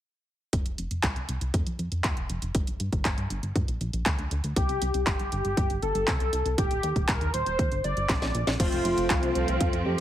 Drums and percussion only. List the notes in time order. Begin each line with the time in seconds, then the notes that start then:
0.53 kick, closed hi-hat
0.66 closed hi-hat
0.78 closed hi-hat
0.91 closed hi-hat
1.03 kick, clap, closed hi-hat
1.16 closed hi-hat
1.29 closed hi-hat
1.41 closed hi-hat
1.54 kick, closed hi-hat
1.67 closed hi-hat
1.79 closed hi-hat
1.92 closed hi-hat
2.04 kick, clap, closed hi-hat
2.17 closed hi-hat
2.29 closed hi-hat
2.42 closed hi-hat
2.55 kick, closed hi-hat
2.67 closed hi-hat
2.80 closed hi-hat
2.93 kick, closed hi-hat
3.05 kick, clap, closed hi-hat
3.18 closed hi-hat
3.30 closed hi-hat
3.43 closed hi-hat
3.56 kick, closed hi-hat
3.68 closed hi-hat
3.81 closed hi-hat
3.93 closed hi-hat
4.06 kick, clap, closed hi-hat
4.19 closed hi-hat
4.31 closed hi-hat
4.44 closed hi-hat
4.56 kick, closed hi-hat
4.69 closed hi-hat
4.82 closed hi-hat
4.94 closed hi-hat
5.07 kick, clap, closed hi-hat
5.19 closed hi-hat
5.32 closed hi-hat
5.45 closed hi-hat
5.57 kick, closed hi-hat
5.70 closed hi-hat
5.82 closed hi-hat
5.95 closed hi-hat
6.08 kick, clap, closed hi-hat
6.20 closed hi-hat
6.33 closed hi-hat
6.46 closed hi-hat
6.58 kick, closed hi-hat
6.71 closed hi-hat
6.83 closed hi-hat
6.96 kick, closed hi-hat
7.09 kick, clap, closed hi-hat
7.21 closed hi-hat
7.34 closed hi-hat
7.46 closed hi-hat
7.59 kick, closed hi-hat
7.72 closed hi-hat
7.84 closed hi-hat
7.97 closed hi-hat
8.09 kick, snare, clap, closed hi-hat
8.22 snare, closed hi-hat
8.35 closed hi-hat
8.47 snare, closed hi-hat
8.60 kick, closed hi-hat, crash
8.72 closed hi-hat
8.85 closed hi-hat
8.98 closed hi-hat
9.10 kick, clap, closed hi-hat
9.23 closed hi-hat
9.35 closed hi-hat
9.48 closed hi-hat
9.61 kick, closed hi-hat
9.73 closed hi-hat